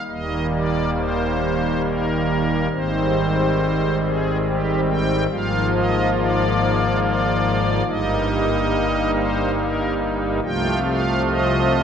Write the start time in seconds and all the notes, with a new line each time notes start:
0.09 D#1 D#2 D#3 G3 A#3 D#5
0.53 D5
0.98 C5
1.84 A#4
2.72 G#1 G#2 D#3 G3 C4 C5
4.01 G#4
4.44 G4
4.88 G5
5.30 G#1 G#2 F3 A#3 F4 F5
5.74 D#5
6.17 D5
7.02 D5
7.86 G1 G2 G3 A#3 D#4 D#5
9.15 C5
9.57 A#4
10.42 C2 C3 F3 A3 F4 G5
10.86 F5
11.28 D#5